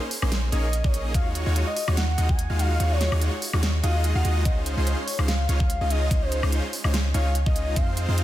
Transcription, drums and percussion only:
0.11 open hi-hat
0.22 high woodblock
0.32 snare, closed hi-hat
0.52 closed hi-hat
0.73 closed hi-hat
0.84 kick
0.94 closed hi-hat
1.14 kick, closed hi-hat
1.35 closed hi-hat
1.56 closed hi-hat
1.77 open hi-hat
1.88 high woodblock
1.97 snare, closed hi-hat
2.18 closed hi-hat
2.29 kick
2.39 closed hi-hat
2.59 closed hi-hat
2.80 closed hi-hat
3.01 snare, closed hi-hat
3.12 high woodblock
3.21 closed hi-hat
3.42 open hi-hat
3.53 high woodblock
3.63 snare, closed hi-hat
3.84 closed hi-hat
4.04 closed hi-hat
4.25 closed hi-hat
4.45 kick, closed hi-hat
4.66 closed hi-hat
4.87 closed hi-hat
5.08 open hi-hat
5.19 high woodblock
5.28 snare, closed hi-hat
5.49 closed hi-hat
5.60 kick
5.70 closed hi-hat
5.90 closed hi-hat
6.11 kick, closed hi-hat
6.32 closed hi-hat
6.43 high woodblock
6.52 closed hi-hat
6.73 open hi-hat
6.84 high woodblock
6.94 snare, closed hi-hat
7.14 closed hi-hat
7.35 closed hi-hat
7.46 kick
7.56 closed hi-hat
7.76 kick, closed hi-hat
7.97 closed hi-hat
8.18 closed hi-hat

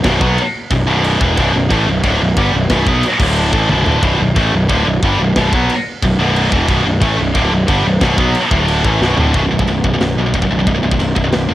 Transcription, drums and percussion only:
0.04 kick, snare, crash
0.21 kick
0.38 crash
0.71 kick, crash
1.04 crash
1.21 kick
1.37 kick, crash
1.71 kick, crash
2.04 kick, crash
2.37 kick, crash
2.70 kick, snare, crash
2.87 kick
3.03 crash
3.20 kick, crash
3.37 crash
3.53 kick
3.69 high tom
3.86 floor tom
4.03 kick, crash
4.36 kick, crash
4.69 kick, crash
5.03 kick, crash
5.36 kick, snare, crash
5.53 kick
5.70 crash
6.02 kick, crash
6.36 crash
6.52 kick
6.68 kick, crash
7.02 kick, crash
7.35 kick, crash
7.68 kick, crash
8.01 kick, snare, crash
8.18 kick
8.35 crash
8.51 kick
8.68 crash
8.85 kick
9.02 snare
9.18 floor tom
9.34 kick, china
9.59 kick
9.67 china
9.84 kick
10.01 snare, china
10.34 kick, china
10.42 kick
10.67 kick, china
10.91 kick
11.00 china
11.16 kick
11.32 snare, china

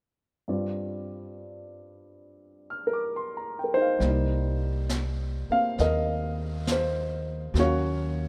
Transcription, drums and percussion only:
4.01 brush sweep, snare
4.89 snare, hi-hat pedal
5.78 brush sweep, snare
6.67 snare, hi-hat pedal
7.55 brush sweep, snare

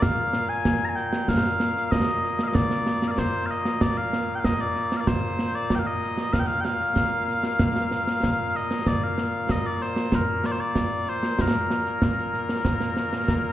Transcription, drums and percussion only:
0.02 concert bass drum, snare
0.33 snare
0.65 concert bass drum, snare
0.97 snare
1.13 snare
1.28 concert bass drum, snare
1.45 snare
1.60 snare
1.76 snare
1.92 concert bass drum, snare
2.24 snare
2.39 snare
2.55 concert bass drum, snare
2.71 snare
2.86 snare
3.02 snare
3.18 concert bass drum, snare
3.49 snare
3.65 snare
3.81 concert bass drum, snare
4.13 snare
4.44 concert bass drum, snare
4.76 snare
4.92 snare
5.07 concert bass drum, snare
5.39 snare
5.70 concert bass drum, snare
6.02 snare
6.18 snare
6.33 concert bass drum, snare
6.49 snare
6.65 snare
6.81 snare
6.96 concert bass drum, snare
7.28 snare
7.43 snare
7.59 concert bass drum, snare
7.76 snare
7.91 snare
8.07 snare
8.23 concert bass drum, snare
8.55 snare
8.71 snare
8.86 concert bass drum, snare
9.18 snare
9.49 concert bass drum, snare
9.81 snare
9.96 snare
10.12 concert bass drum, snare
10.44 snare
10.75 concert bass drum, snare
11.07 snare
11.23 snare
11.39 concert bass drum, snare
11.55 snare
11.70 snare
11.86 snare
12.02 concert bass drum, snare
12.18 snare
12.34 snare
12.49 snare
12.65 concert bass drum, snare
12.80 snare
12.97 snare
13.13 snare
13.28 concert bass drum, snare

